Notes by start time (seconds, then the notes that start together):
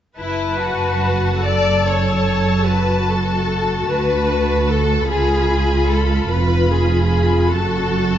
0.18 F#1 F#2 E4 B4 A5
0.61 F#4
1.44 A4 D5
1.86 C#5
2.65 F#4 B4
3.08 A4
3.88 D2 B4
4.70 A4
5.07 C#2 F4 G#4 B5
5.90 A4
6.30 F1 F2 B4 B5
6.71 G#4
7.51 F#1 F#2 F#4 A4 A5